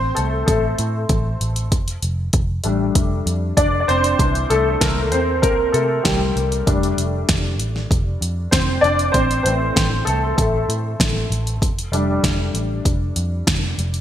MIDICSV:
0, 0, Header, 1, 4, 480
1, 0, Start_track
1, 0, Key_signature, -1, "major"
1, 0, Tempo, 618812
1, 1330, Time_signature, 4, 2, 24, 8
1, 10866, End_track
2, 0, Start_track
2, 0, Title_t, "Grand piano"
2, 0, Program_c, 0, 0
2, 0, Control_c, 0, 64, 127
2, 0, Note_on_c, 0, 52, 45
2, 0, Note_on_c, 0, 57, 42
2, 0, Note_on_c, 0, 60, 67
2, 0, Note_on_c, 0, 72, 98
2, 102, Note_off_c, 0, 60, 0
2, 115, Note_on_c, 0, 69, 59
2, 129, Note_off_c, 0, 57, 0
2, 137, Note_off_c, 0, 72, 0
2, 141, Note_on_c, 0, 57, 47
2, 171, Note_off_c, 0, 69, 0
2, 194, Note_off_c, 0, 57, 0
2, 359, Note_on_c, 0, 69, 62
2, 384, Note_on_c, 0, 57, 54
2, 1054, Note_off_c, 0, 69, 0
2, 1066, Note_off_c, 0, 57, 0
2, 1300, Note_off_c, 0, 52, 0
2, 1340, Control_c, 0, 64, 0
2, 1458, Control_c, 0, 64, 127
2, 2044, Note_on_c, 0, 55, 48
2, 2048, Note_on_c, 0, 57, 45
2, 2055, Note_on_c, 0, 62, 46
2, 2768, Note_on_c, 0, 74, 78
2, 2769, Note_off_c, 0, 62, 0
2, 2780, Note_on_c, 0, 62, 63
2, 2810, Note_off_c, 0, 74, 0
2, 2821, Note_off_c, 0, 62, 0
2, 2949, Note_on_c, 0, 74, 63
2, 3007, Note_off_c, 0, 74, 0
2, 3011, Note_on_c, 0, 72, 97
2, 3025, Note_on_c, 0, 60, 67
2, 3217, Note_off_c, 0, 55, 0
2, 3219, Note_off_c, 0, 57, 0
2, 3243, Note_off_c, 0, 60, 0
2, 3251, Note_on_c, 0, 52, 49
2, 3255, Note_on_c, 0, 60, 42
2, 3258, Note_on_c, 0, 62, 51
2, 3261, Control_c, 0, 64, 0
2, 3417, Control_c, 0, 64, 127
2, 3460, Note_off_c, 0, 72, 0
2, 3490, Note_on_c, 0, 69, 77
2, 3504, Note_on_c, 0, 57, 64
2, 3713, Note_off_c, 0, 69, 0
2, 3721, Note_off_c, 0, 57, 0
2, 3728, Note_on_c, 0, 70, 75
2, 3741, Note_on_c, 0, 58, 61
2, 3953, Note_off_c, 0, 70, 0
2, 3959, Note_off_c, 0, 58, 0
2, 3970, Note_on_c, 0, 72, 72
2, 3976, Note_off_c, 0, 60, 0
2, 3988, Note_on_c, 0, 60, 61
2, 4203, Note_off_c, 0, 60, 0
2, 4205, Note_on_c, 0, 70, 80
2, 4217, Note_off_c, 0, 72, 0
2, 4221, Note_on_c, 0, 58, 59
2, 4439, Note_off_c, 0, 58, 0
2, 4439, Note_on_c, 0, 69, 67
2, 4455, Note_off_c, 0, 70, 0
2, 4458, Note_on_c, 0, 57, 53
2, 4678, Note_off_c, 0, 57, 0
2, 4680, Note_on_c, 0, 67, 52
2, 4692, Note_off_c, 0, 69, 0
2, 4698, Note_on_c, 0, 55, 48
2, 5020, Note_off_c, 0, 67, 0
2, 5030, Note_off_c, 0, 55, 0
2, 5140, Note_off_c, 0, 52, 0
2, 5143, Note_off_c, 0, 62, 0
2, 5169, Note_on_c, 0, 55, 49
2, 5172, Note_on_c, 0, 57, 38
2, 5175, Note_on_c, 0, 62, 56
2, 5182, Control_c, 0, 64, 0
2, 5329, Control_c, 0, 64, 127
2, 6603, Note_on_c, 0, 72, 69
2, 6623, Note_on_c, 0, 60, 58
2, 6830, Note_off_c, 0, 72, 0
2, 6835, Note_on_c, 0, 74, 86
2, 6840, Note_off_c, 0, 60, 0
2, 6846, Note_off_c, 0, 62, 0
2, 6858, Note_on_c, 0, 62, 64
2, 7059, Note_off_c, 0, 55, 0
2, 7060, Note_off_c, 0, 57, 0
2, 7073, Note_on_c, 0, 72, 85
2, 7078, Note_off_c, 0, 62, 0
2, 7090, Note_off_c, 0, 74, 0
2, 7100, Control_c, 0, 64, 0
2, 7101, Note_on_c, 0, 60, 67
2, 7245, Control_c, 0, 64, 127
2, 7304, Note_off_c, 0, 72, 0
2, 7315, Note_on_c, 0, 72, 78
2, 7320, Note_off_c, 0, 60, 0
2, 7337, Note_on_c, 0, 52, 47
2, 7341, Note_on_c, 0, 57, 45
2, 7346, Note_on_c, 0, 60, 65
2, 7772, Note_off_c, 0, 72, 0
2, 7788, Note_off_c, 0, 60, 0
2, 7795, Note_on_c, 0, 69, 73
2, 7815, Note_off_c, 0, 57, 0
2, 7827, Note_on_c, 0, 57, 51
2, 8023, Note_off_c, 0, 52, 0
2, 8029, Note_off_c, 0, 69, 0
2, 8041, Note_on_c, 0, 69, 60
2, 8042, Note_off_c, 0, 57, 0
2, 8069, Note_on_c, 0, 57, 52
2, 8735, Note_off_c, 0, 69, 0
2, 8749, Note_off_c, 0, 57, 0
2, 9020, Control_c, 0, 64, 0
2, 9160, Control_c, 0, 64, 127
2, 9246, Note_on_c, 0, 55, 51
2, 9251, Note_on_c, 0, 57, 39
2, 9256, Note_on_c, 0, 62, 52
2, 10866, Note_off_c, 0, 55, 0
2, 10866, Note_off_c, 0, 57, 0
2, 10866, Note_off_c, 0, 62, 0
2, 10866, End_track
3, 0, Start_track
3, 0, Title_t, "Picked electric bass"
3, 0, Program_c, 1, 34
3, 0, Note_on_c, 1, 33, 83
3, 88, Note_off_c, 1, 33, 0
3, 136, Note_on_c, 1, 36, 68
3, 331, Note_off_c, 1, 36, 0
3, 369, Note_on_c, 1, 33, 82
3, 567, Note_off_c, 1, 33, 0
3, 612, Note_on_c, 1, 45, 77
3, 808, Note_off_c, 1, 45, 0
3, 849, Note_on_c, 1, 33, 85
3, 1047, Note_off_c, 1, 33, 0
3, 1091, Note_on_c, 1, 33, 70
3, 1332, Note_off_c, 1, 33, 0
3, 1332, Note_on_c, 1, 29, 79
3, 1528, Note_off_c, 1, 29, 0
3, 1572, Note_on_c, 1, 29, 80
3, 1768, Note_off_c, 1, 29, 0
3, 1811, Note_on_c, 1, 29, 84
3, 2008, Note_off_c, 1, 29, 0
3, 2052, Note_on_c, 1, 33, 64
3, 2248, Note_off_c, 1, 33, 0
3, 2293, Note_on_c, 1, 29, 72
3, 2489, Note_off_c, 1, 29, 0
3, 2530, Note_on_c, 1, 41, 74
3, 2727, Note_off_c, 1, 41, 0
3, 2771, Note_on_c, 1, 29, 76
3, 2968, Note_off_c, 1, 29, 0
3, 3013, Note_on_c, 1, 29, 71
3, 3209, Note_off_c, 1, 29, 0
3, 3252, Note_on_c, 1, 36, 89
3, 3448, Note_off_c, 1, 36, 0
3, 3492, Note_on_c, 1, 36, 80
3, 3688, Note_off_c, 1, 36, 0
3, 3733, Note_on_c, 1, 36, 83
3, 3974, Note_off_c, 1, 36, 0
3, 3974, Note_on_c, 1, 40, 71
3, 4213, Note_off_c, 1, 40, 0
3, 4213, Note_on_c, 1, 36, 78
3, 4409, Note_off_c, 1, 36, 0
3, 4451, Note_on_c, 1, 48, 82
3, 4648, Note_off_c, 1, 48, 0
3, 4694, Note_on_c, 1, 36, 74
3, 4889, Note_off_c, 1, 36, 0
3, 4933, Note_on_c, 1, 36, 80
3, 5129, Note_off_c, 1, 36, 0
3, 5175, Note_on_c, 1, 29, 79
3, 5370, Note_off_c, 1, 29, 0
3, 5410, Note_on_c, 1, 29, 79
3, 5607, Note_off_c, 1, 29, 0
3, 5654, Note_on_c, 1, 29, 81
3, 5891, Note_off_c, 1, 29, 0
3, 5891, Note_on_c, 1, 33, 68
3, 6088, Note_off_c, 1, 33, 0
3, 6134, Note_on_c, 1, 29, 75
3, 6329, Note_off_c, 1, 29, 0
3, 6369, Note_on_c, 1, 41, 66
3, 6567, Note_off_c, 1, 41, 0
3, 6613, Note_on_c, 1, 29, 75
3, 6809, Note_off_c, 1, 29, 0
3, 6850, Note_on_c, 1, 29, 73
3, 7047, Note_off_c, 1, 29, 0
3, 7092, Note_on_c, 1, 33, 79
3, 7288, Note_off_c, 1, 33, 0
3, 7328, Note_on_c, 1, 33, 75
3, 7526, Note_off_c, 1, 33, 0
3, 7574, Note_on_c, 1, 33, 87
3, 7769, Note_off_c, 1, 33, 0
3, 7812, Note_on_c, 1, 36, 68
3, 8008, Note_off_c, 1, 36, 0
3, 8051, Note_on_c, 1, 33, 74
3, 8248, Note_off_c, 1, 33, 0
3, 8289, Note_on_c, 1, 45, 69
3, 8486, Note_off_c, 1, 45, 0
3, 8533, Note_on_c, 1, 33, 85
3, 8729, Note_off_c, 1, 33, 0
3, 8767, Note_on_c, 1, 33, 79
3, 9014, Note_off_c, 1, 33, 0
3, 9014, Note_on_c, 1, 29, 79
3, 9210, Note_off_c, 1, 29, 0
3, 9246, Note_on_c, 1, 29, 78
3, 9445, Note_off_c, 1, 29, 0
3, 9490, Note_on_c, 1, 29, 89
3, 9687, Note_off_c, 1, 29, 0
3, 9727, Note_on_c, 1, 33, 70
3, 9926, Note_off_c, 1, 33, 0
3, 9971, Note_on_c, 1, 29, 72
3, 10168, Note_off_c, 1, 29, 0
3, 10210, Note_on_c, 1, 41, 74
3, 10407, Note_off_c, 1, 41, 0
3, 10451, Note_on_c, 1, 29, 73
3, 10648, Note_off_c, 1, 29, 0
3, 10691, Note_on_c, 1, 29, 80
3, 10866, Note_off_c, 1, 29, 0
3, 10866, End_track
4, 0, Start_track
4, 0, Title_t, "Drums"
4, 129, Note_on_c, 9, 42, 55
4, 206, Note_off_c, 9, 42, 0
4, 370, Note_on_c, 9, 36, 90
4, 371, Note_on_c, 9, 42, 70
4, 448, Note_off_c, 9, 36, 0
4, 449, Note_off_c, 9, 42, 0
4, 609, Note_on_c, 9, 42, 58
4, 686, Note_off_c, 9, 42, 0
4, 848, Note_on_c, 9, 42, 69
4, 849, Note_on_c, 9, 36, 91
4, 925, Note_off_c, 9, 42, 0
4, 927, Note_off_c, 9, 36, 0
4, 1094, Note_on_c, 9, 42, 48
4, 1172, Note_off_c, 9, 42, 0
4, 1211, Note_on_c, 9, 42, 49
4, 1288, Note_off_c, 9, 42, 0
4, 1332, Note_on_c, 9, 36, 79
4, 1333, Note_on_c, 9, 42, 69
4, 1410, Note_off_c, 9, 36, 0
4, 1410, Note_off_c, 9, 42, 0
4, 1456, Note_on_c, 9, 42, 46
4, 1534, Note_off_c, 9, 42, 0
4, 1571, Note_on_c, 9, 42, 57
4, 1648, Note_off_c, 9, 42, 0
4, 1807, Note_on_c, 9, 42, 65
4, 1812, Note_on_c, 9, 36, 87
4, 1885, Note_off_c, 9, 42, 0
4, 1889, Note_off_c, 9, 36, 0
4, 2044, Note_on_c, 9, 42, 50
4, 2122, Note_off_c, 9, 42, 0
4, 2291, Note_on_c, 9, 36, 93
4, 2291, Note_on_c, 9, 42, 72
4, 2368, Note_off_c, 9, 42, 0
4, 2369, Note_off_c, 9, 36, 0
4, 2536, Note_on_c, 9, 42, 55
4, 2613, Note_off_c, 9, 42, 0
4, 2771, Note_on_c, 9, 36, 91
4, 2773, Note_on_c, 9, 42, 72
4, 2848, Note_off_c, 9, 36, 0
4, 2850, Note_off_c, 9, 42, 0
4, 3017, Note_on_c, 9, 42, 41
4, 3094, Note_off_c, 9, 42, 0
4, 3134, Note_on_c, 9, 42, 50
4, 3212, Note_off_c, 9, 42, 0
4, 3253, Note_on_c, 9, 36, 87
4, 3255, Note_on_c, 9, 42, 69
4, 3330, Note_off_c, 9, 36, 0
4, 3333, Note_off_c, 9, 42, 0
4, 3376, Note_on_c, 9, 42, 41
4, 3454, Note_off_c, 9, 42, 0
4, 3494, Note_on_c, 9, 42, 61
4, 3572, Note_off_c, 9, 42, 0
4, 3734, Note_on_c, 9, 36, 80
4, 3734, Note_on_c, 9, 38, 78
4, 3734, Note_on_c, 9, 42, 72
4, 3811, Note_off_c, 9, 36, 0
4, 3811, Note_off_c, 9, 38, 0
4, 3811, Note_off_c, 9, 42, 0
4, 3970, Note_on_c, 9, 42, 51
4, 4048, Note_off_c, 9, 42, 0
4, 4212, Note_on_c, 9, 36, 98
4, 4215, Note_on_c, 9, 42, 77
4, 4290, Note_off_c, 9, 36, 0
4, 4293, Note_off_c, 9, 42, 0
4, 4454, Note_on_c, 9, 42, 53
4, 4532, Note_off_c, 9, 42, 0
4, 4692, Note_on_c, 9, 36, 91
4, 4693, Note_on_c, 9, 42, 69
4, 4695, Note_on_c, 9, 38, 101
4, 4770, Note_off_c, 9, 36, 0
4, 4771, Note_off_c, 9, 42, 0
4, 4772, Note_off_c, 9, 38, 0
4, 4939, Note_on_c, 9, 42, 42
4, 5017, Note_off_c, 9, 42, 0
4, 5057, Note_on_c, 9, 42, 45
4, 5135, Note_off_c, 9, 42, 0
4, 5175, Note_on_c, 9, 36, 98
4, 5176, Note_on_c, 9, 42, 69
4, 5253, Note_off_c, 9, 36, 0
4, 5254, Note_off_c, 9, 42, 0
4, 5300, Note_on_c, 9, 42, 41
4, 5378, Note_off_c, 9, 42, 0
4, 5416, Note_on_c, 9, 42, 61
4, 5493, Note_off_c, 9, 42, 0
4, 5652, Note_on_c, 9, 38, 79
4, 5652, Note_on_c, 9, 42, 71
4, 5654, Note_on_c, 9, 36, 79
4, 5730, Note_off_c, 9, 38, 0
4, 5730, Note_off_c, 9, 42, 0
4, 5731, Note_off_c, 9, 36, 0
4, 5892, Note_on_c, 9, 42, 56
4, 5969, Note_off_c, 9, 42, 0
4, 6018, Note_on_c, 9, 38, 28
4, 6095, Note_off_c, 9, 38, 0
4, 6134, Note_on_c, 9, 36, 97
4, 6141, Note_on_c, 9, 42, 62
4, 6211, Note_off_c, 9, 36, 0
4, 6218, Note_off_c, 9, 42, 0
4, 6378, Note_on_c, 9, 42, 62
4, 6456, Note_off_c, 9, 42, 0
4, 6612, Note_on_c, 9, 36, 82
4, 6613, Note_on_c, 9, 42, 64
4, 6615, Note_on_c, 9, 38, 90
4, 6689, Note_off_c, 9, 36, 0
4, 6691, Note_off_c, 9, 42, 0
4, 6692, Note_off_c, 9, 38, 0
4, 6859, Note_on_c, 9, 42, 44
4, 6936, Note_off_c, 9, 42, 0
4, 6975, Note_on_c, 9, 42, 46
4, 7052, Note_off_c, 9, 42, 0
4, 7091, Note_on_c, 9, 36, 80
4, 7091, Note_on_c, 9, 42, 67
4, 7169, Note_off_c, 9, 36, 0
4, 7169, Note_off_c, 9, 42, 0
4, 7219, Note_on_c, 9, 42, 43
4, 7297, Note_off_c, 9, 42, 0
4, 7336, Note_on_c, 9, 42, 66
4, 7413, Note_off_c, 9, 42, 0
4, 7573, Note_on_c, 9, 36, 87
4, 7577, Note_on_c, 9, 38, 84
4, 7577, Note_on_c, 9, 42, 72
4, 7651, Note_off_c, 9, 36, 0
4, 7654, Note_off_c, 9, 42, 0
4, 7655, Note_off_c, 9, 38, 0
4, 7812, Note_on_c, 9, 42, 52
4, 7890, Note_off_c, 9, 42, 0
4, 8051, Note_on_c, 9, 36, 89
4, 8055, Note_on_c, 9, 42, 72
4, 8129, Note_off_c, 9, 36, 0
4, 8132, Note_off_c, 9, 42, 0
4, 8298, Note_on_c, 9, 42, 56
4, 8375, Note_off_c, 9, 42, 0
4, 8532, Note_on_c, 9, 36, 99
4, 8537, Note_on_c, 9, 42, 72
4, 8538, Note_on_c, 9, 38, 92
4, 8609, Note_off_c, 9, 36, 0
4, 8614, Note_off_c, 9, 42, 0
4, 8616, Note_off_c, 9, 38, 0
4, 8781, Note_on_c, 9, 42, 48
4, 8859, Note_off_c, 9, 42, 0
4, 8897, Note_on_c, 9, 42, 47
4, 8975, Note_off_c, 9, 42, 0
4, 9013, Note_on_c, 9, 36, 84
4, 9018, Note_on_c, 9, 42, 70
4, 9091, Note_off_c, 9, 36, 0
4, 9096, Note_off_c, 9, 42, 0
4, 9142, Note_on_c, 9, 42, 45
4, 9219, Note_off_c, 9, 42, 0
4, 9256, Note_on_c, 9, 42, 62
4, 9334, Note_off_c, 9, 42, 0
4, 9492, Note_on_c, 9, 36, 83
4, 9494, Note_on_c, 9, 38, 81
4, 9494, Note_on_c, 9, 42, 74
4, 9570, Note_off_c, 9, 36, 0
4, 9572, Note_off_c, 9, 38, 0
4, 9572, Note_off_c, 9, 42, 0
4, 9733, Note_on_c, 9, 42, 54
4, 9810, Note_off_c, 9, 42, 0
4, 9970, Note_on_c, 9, 36, 88
4, 9973, Note_on_c, 9, 42, 73
4, 10048, Note_off_c, 9, 36, 0
4, 10050, Note_off_c, 9, 42, 0
4, 10208, Note_on_c, 9, 42, 61
4, 10286, Note_off_c, 9, 42, 0
4, 10450, Note_on_c, 9, 36, 97
4, 10451, Note_on_c, 9, 42, 69
4, 10452, Note_on_c, 9, 38, 103
4, 10527, Note_off_c, 9, 36, 0
4, 10528, Note_off_c, 9, 42, 0
4, 10530, Note_off_c, 9, 38, 0
4, 10694, Note_on_c, 9, 42, 48
4, 10772, Note_off_c, 9, 42, 0
4, 10811, Note_on_c, 9, 42, 50
4, 10866, Note_off_c, 9, 42, 0
4, 10866, End_track
0, 0, End_of_file